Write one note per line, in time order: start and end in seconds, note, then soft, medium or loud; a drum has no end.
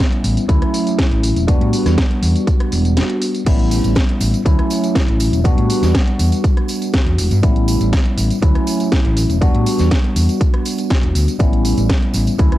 0.00 0.44 G3 medium
0.00 0.44 B3 medium
0.00 0.44 C#4 medium
0.00 0.45 E4 medium
0.12 closed hi-hat soft
0.24 0.33 A1 loud
0.24 open hi-hat loud
0.24 tambourine medium
0.37 closed hi-hat soft
0.37 tambourine soft
0.48 0.58 D2 loud
0.48 1.43 F#3 medium
0.48 1.43 A3 medium
0.48 1.44 C#4 medium
0.48 1.44 E4 medium
0.48 kick loud
0.48 closed hi-hat loud
0.48 tambourine soft
0.62 cross-stick medium
0.62 closed hi-hat soft
0.74 open hi-hat loud
0.74 tambourine medium
0.87 closed hi-hat soft
0.87 tambourine soft
0.99 kick loud
0.99 snare loud
0.99 closed hi-hat medium
0.99 tambourine soft
1.11 1.29 A1 loud
1.11 closed hi-hat soft
1.23 open hi-hat loud
1.23 tambourine medium
1.36 1.53 E1 medium
1.36 closed hi-hat soft
1.36 tambourine soft
1.47 3.41 G3 medium
1.47 3.42 B3 medium
1.47 3.42 D4 medium
1.47 3.42 F#4 loud
1.47 kick loud
1.47 closed hi-hat loud
1.47 tambourine soft
1.61 1.69 A2 loud
1.61 closed hi-hat soft
1.73 open hi-hat loud
1.73 tambourine medium
1.86 1.94 E2 medium
1.86 cross-stick medium
1.86 snare soft
1.86 closed hi-hat soft
1.86 tambourine soft
1.98 kick loud
1.98 snare loud
1.98 closed hi-hat medium
1.98 tambourine soft
2.11 closed hi-hat soft
2.23 2.32 E2 loud
2.23 open hi-hat loud
2.23 tambourine medium
2.36 closed hi-hat soft
2.36 tambourine soft
2.47 kick loud
2.47 closed hi-hat loud
2.47 tambourine soft
2.60 cross-stick medium
2.60 closed hi-hat soft
2.72 2.97 E1 medium
2.72 open hi-hat loud
2.72 tambourine medium
2.85 closed hi-hat soft
2.85 tambourine soft
2.97 snare loud
2.97 closed hi-hat loud
2.97 tambourine soft
3.10 closed hi-hat soft
3.22 open hi-hat loud
3.22 tambourine medium
3.35 closed hi-hat soft
3.35 tambourine soft
3.46 3.78 A1 loud
3.46 4.41 G3 medium
3.46 4.41 B3 medium
3.46 4.41 C#4 medium
3.46 4.41 E4 medium
3.46 kick loud
3.46 closed hi-hat medium
3.46 crash medium
3.46 tambourine soft
3.59 closed hi-hat soft
3.71 open hi-hat loud
3.71 tambourine medium
3.84 3.93 A1 medium
3.84 closed hi-hat soft
3.84 tambourine medium
3.84 tambourine soft
3.95 kick loud
3.95 snare loud
3.95 closed hi-hat loud
3.95 tambourine soft
4.09 closed hi-hat soft
4.20 4.30 A1 medium
4.20 open hi-hat loud
4.20 tambourine loud
4.20 tambourine medium
4.34 closed hi-hat soft
4.34 tambourine soft
4.34 tambourine medium
4.45 4.55 D2 loud
4.45 5.40 F#3 medium
4.45 5.40 A3 medium
4.45 5.40 C#4 medium
4.45 5.41 E4 medium
4.45 kick loud
4.45 closed hi-hat medium
4.45 tambourine soft
4.59 cross-stick medium
4.59 closed hi-hat soft
4.70 open hi-hat loud
4.70 tambourine medium
4.83 closed hi-hat soft
4.83 tambourine medium
4.83 tambourine soft
4.95 kick loud
4.95 snare loud
4.95 closed hi-hat loud
4.95 tambourine soft
5.08 5.25 A1 loud
5.08 closed hi-hat soft
5.20 open hi-hat loud
5.20 tambourine medium
5.33 5.50 E1 medium
5.33 closed hi-hat soft
5.33 tambourine medium
5.33 tambourine soft
5.44 7.38 G3 medium
5.44 7.38 B3 medium
5.44 7.39 D4 medium
5.44 7.39 F#4 loud
5.44 kick loud
5.44 closed hi-hat medium
5.44 tambourine soft
5.58 5.66 A2 loud
5.58 closed hi-hat soft
5.70 open hi-hat loud
5.70 tambourine medium
5.83 5.91 E2 medium
5.83 snare soft
5.83 closed hi-hat soft
5.83 tambourine soft
5.83 tambourine medium
5.94 kick loud
5.94 snare loud
5.94 closed hi-hat medium
5.94 tambourine soft
6.07 closed hi-hat soft
6.19 6.28 E2 loud
6.19 open hi-hat loud
6.19 tambourine medium
6.32 closed hi-hat soft
6.32 tambourine medium
6.32 tambourine soft
6.44 kick loud
6.44 closed hi-hat medium
6.44 tambourine soft
6.57 cross-stick medium
6.57 closed hi-hat soft
6.68 open hi-hat loud
6.68 tambourine medium
6.82 closed hi-hat soft
6.82 tambourine medium
6.82 tambourine soft
6.93 kick loud
6.93 snare loud
6.93 closed hi-hat medium
6.93 tambourine soft
7.06 7.15 E2 loud
7.06 closed hi-hat soft
7.18 7.27 E1 loud
7.18 open hi-hat loud
7.18 tambourine medium
7.31 7.40 G2 loud
7.31 closed hi-hat soft
7.31 tambourine medium
7.31 tambourine soft
7.42 7.75 A1 loud
7.42 8.37 G3 medium
7.42 8.37 B3 medium
7.42 8.38 C#4 medium
7.42 8.38 E4 medium
7.42 kick loud
7.42 closed hi-hat medium
7.42 tambourine soft
7.56 closed hi-hat soft
7.68 open hi-hat loud
7.68 tambourine loud
7.68 tambourine medium
7.81 7.89 A1 medium
7.81 closed hi-hat soft
7.81 tambourine medium
7.81 tambourine soft
7.93 kick loud
7.93 snare loud
7.93 closed hi-hat medium
7.93 tambourine soft
8.06 closed hi-hat soft
8.18 8.27 A1 medium
8.18 open hi-hat loud
8.18 tambourine medium
8.18 tambourine loud
8.30 closed hi-hat soft
8.30 tambourine soft
8.30 tambourine medium
8.42 8.52 D2 loud
8.42 9.36 F#3 medium
8.42 9.37 A3 medium
8.42 9.37 C#4 medium
8.42 9.37 E4 medium
8.42 kick loud
8.42 closed hi-hat medium
8.42 tambourine soft
8.55 cross-stick medium
8.55 closed hi-hat soft
8.67 open hi-hat loud
8.67 tambourine loud
8.67 tambourine medium
8.80 closed hi-hat soft
8.80 tambourine medium
8.80 tambourine soft
8.92 kick loud
8.92 snare loud
8.92 closed hi-hat medium
8.92 tambourine soft
9.05 9.22 A1 loud
9.05 closed hi-hat soft
9.17 open hi-hat loud
9.17 tambourine medium
9.30 9.47 E1 medium
9.30 closed hi-hat soft
9.30 tambourine soft
9.30 tambourine medium
9.41 11.35 G3 medium
9.41 11.35 B3 medium
9.41 11.35 D4 medium
9.41 11.36 F#4 loud
9.41 kick loud
9.41 closed hi-hat medium
9.41 tambourine soft
9.54 9.63 A2 loud
9.54 closed hi-hat soft
9.66 open hi-hat loud
9.66 tambourine medium
9.78 9.88 E2 medium
9.78 snare soft
9.78 closed hi-hat soft
9.78 tambourine medium
9.78 tambourine soft
9.91 kick loud
9.91 snare loud
9.91 closed hi-hat medium
9.91 tambourine soft
10.04 closed hi-hat soft
10.16 10.25 E2 medium
10.16 open hi-hat loud
10.16 tambourine loud
10.16 tambourine medium
10.29 closed hi-hat soft
10.29 tambourine medium
10.29 tambourine soft
10.41 kick loud
10.41 closed hi-hat medium
10.41 tambourine soft
10.54 cross-stick medium
10.54 closed hi-hat soft
10.65 open hi-hat loud
10.65 tambourine medium
10.78 closed hi-hat soft
10.78 tambourine medium
10.78 tambourine soft
10.90 kick loud
10.90 snare loud
10.90 closed hi-hat medium
10.90 tambourine soft
11.03 11.12 E1 loud
11.03 closed hi-hat soft
11.15 11.24 D2 medium
11.15 open hi-hat loud
11.15 tambourine medium
11.28 closed hi-hat soft
11.28 tambourine medium
11.28 tambourine soft
11.39 11.72 A1 loud
11.39 12.34 G3 medium
11.39 12.34 B3 medium
11.39 12.34 C#4 medium
11.39 12.35 E4 medium
11.39 kick loud
11.39 closed hi-hat medium
11.39 tambourine soft
11.53 closed hi-hat soft
11.65 open hi-hat loud
11.65 tambourine medium
11.77 11.86 A1 medium
11.77 closed hi-hat soft
11.77 tambourine soft
11.89 kick loud
11.89 snare loud
11.89 closed hi-hat medium
11.89 tambourine soft
12.02 closed hi-hat soft
12.14 12.23 A1 medium
12.14 open hi-hat loud
12.14 tambourine loud
12.14 tambourine medium
12.27 closed hi-hat soft
12.27 tambourine medium
12.27 tambourine soft
12.38 12.48 D2 medium
12.38 12.58 F#3 medium
12.38 12.58 A3 medium
12.38 12.58 C#4 medium
12.38 12.58 E4 medium
12.38 kick loud
12.38 closed hi-hat medium
12.38 tambourine soft
12.52 cross-stick medium
12.52 closed hi-hat soft